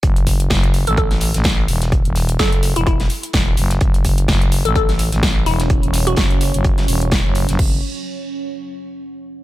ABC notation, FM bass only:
X:1
M:4/4
L:1/16
Q:"Swing 16ths" 1/4=127
K:F#m
V:1 name="FM bass" clef=bass
F,,,4 F,,,3 A,,,4 A,,,3 E,,,2- | E,,, E,,,3 F,,,3 E,,,3 z2 E,,,2 F,,,2 | F,,,4 F,,,3 A,,,4 A,,,3 E,,,2- | E,,, E,,,3 z3 F,,,3 E,,,3 F,,,2 F,,, |
F,,,2 z12 z2 |]